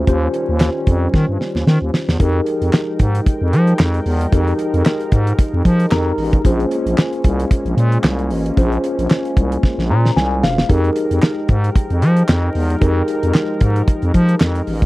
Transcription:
0.07 D#2 D#3 G3 C#4 F4 G4 C5, kick, closed hi-hat
0.34 closed hi-hat
0.49 D#2
0.60 snare, clap, closed hi-hat
0.87 F2, kick, closed hi-hat
1.14 D#3, kick, snare
1.29 G2
1.41 snare
1.55 D#2, snare
1.67 D#3, snare
1.82 D#2
1.94 snare
2.08 E2, snare
2.19 F2 F3 G#3 D#4 G4 G#4 A#4 G5, kick, closed hi-hat
2.46 closed hi-hat
2.62 F2, closed hi-hat
2.73 snare, clap
2.99 G#2, kick, closed hi-hat
3.15 closed hi-hat
3.26 kick, closed hi-hat
3.41 F2
3.53 F3, closed hi-hat
3.67 closed hi-hat
3.79 F2, snare, clap
3.94 closed hi-hat
4.06 E2, open hi-hat
4.21 closed hi-hat
4.32 F2 D#4 G4 G#4 A#4, kick, closed hi-hat
4.47 closed hi-hat
4.59 closed hi-hat
4.74 F2, closed hi-hat
4.85 snare, clap
5.00 closed hi-hat
5.12 G#2, kick, closed hi-hat
5.27 closed hi-hat
5.39 kick, closed hi-hat
5.54 F2
5.65 F3, kick, closed hi-hat
5.80 closed hi-hat
5.91 F2 D#4 G4 G#4 A#4 A#5, snare, clap
6.18 A1, open hi-hat
6.33 kick, closed hi-hat
6.44 A#1 G#3 A#3 C#4 F4 G#4 C5, kick, closed hi-hat
6.60 closed hi-hat
6.71 closed hi-hat
6.86 A#1, closed hi-hat
6.98 snare, clap
7.13 closed hi-hat
7.24 C2, kick, closed hi-hat
7.40 closed hi-hat
7.51 kick, closed hi-hat
7.65 A#1, closed hi-hat
7.77 A#2, closed hi-hat
7.92 closed hi-hat
8.04 C2, snare, clap
8.19 closed hi-hat
8.30 A1, open hi-hat
8.46 closed hi-hat
8.57 A#1 C#4 F4 G#4 C5, kick, closed hi-hat
8.72 closed hi-hat
8.84 closed hi-hat
8.99 A#1, closed hi-hat
9.10 snare, clap
9.25 closed hi-hat
9.37 C2, kick, closed hi-hat
9.52 closed hi-hat
9.63 kick, snare
9.78 A#1, snare
9.90 A#2 A#5
10.05 snare
10.16 C2 G#5, snare
10.43 E1 F5, snare
10.58 snare
10.69 F2 F3 G#3 D#4 G4 G#4 A#4 G5, kick, closed hi-hat
10.84 closed hi-hat
10.96 closed hi-hat
11.11 F2, closed hi-hat
11.22 snare, clap
11.49 G#2, kick, closed hi-hat
11.64 closed hi-hat
11.76 kick, closed hi-hat
11.90 F2, closed hi-hat
12.02 F3, closed hi-hat
12.16 closed hi-hat
12.28 F2, snare, clap
12.55 E2, open hi-hat
12.70 closed hi-hat
12.81 F2 D#4 G4 G#4 A#4, kick, closed hi-hat
13.08 closed hi-hat
13.23 F2, closed hi-hat
13.34 snare, clap
13.61 G#2, kick, closed hi-hat
13.76 closed hi-hat
13.88 kick, closed hi-hat
14.02 F2, closed hi-hat
14.14 F3, kick, closed hi-hat
14.29 closed hi-hat
14.40 F2, snare, clap
14.55 closed hi-hat
14.67 A1, open hi-hat
14.82 kick, closed hi-hat

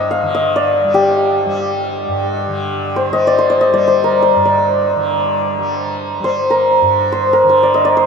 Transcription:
Already playing: G2 D3 G3 C5 D#5 F5
0.11 F5
0.23 D3
0.35 D#5
0.56 D5
0.84 G3
0.94 G4
1.46 G3
2.08 G2
2.48 D3
2.96 C5
3.11 G3 D#5
3.27 D5
3.38 C5
3.50 D5
3.61 D#5
3.73 G3 D5
3.88 C5
4.04 A#4
4.22 C5
4.36 G2
4.45 D5
4.96 D3
5.58 G3
6.20 G3
6.24 C5
6.50 A#4
6.82 G2
7.12 C5
7.33 A#4
7.44 D3
7.49 C5
7.63 D5
7.74 D#5
7.85 D5
7.97 C5

